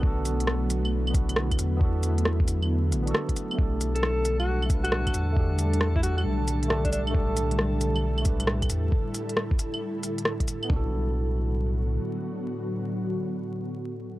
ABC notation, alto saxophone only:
X:1
M:4/4
L:1/16
Q:"Swing 16ths" 1/4=135
K:Bm
V:1 name="Alto saxophone"
z16 | z16 | z3 A4 F2 z2 F4 z | z4 z E F F z4 z D D z |
z16 | z16 | z16 | z16 |]